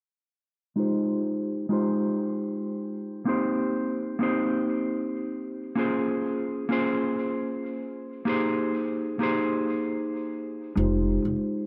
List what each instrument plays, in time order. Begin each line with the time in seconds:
0.76 clean electric guitar G#3 D#4 F4 G4 C5
1.69 clean electric guitar G#3 D#4 F4 G4 C5
3.25 clean electric guitar A#3 C4 D#4 G4 C5
4.19 clean electric guitar A#3 C4 D#4 G4 C5
5.75 clean electric guitar A#3 C#4 F4 G#4 C5
6.69 clean electric guitar A#3 C#4 F4 G#4 C5
8.25 clean electric guitar A#3 D#4 G4 G#4 C5
9.19 clean electric guitar A#3 D#4 G4 G#4 C5
10.76 upright bass F1, clean electric guitar G#3 D#4 F4 G4 C5
11.25 upright bass F1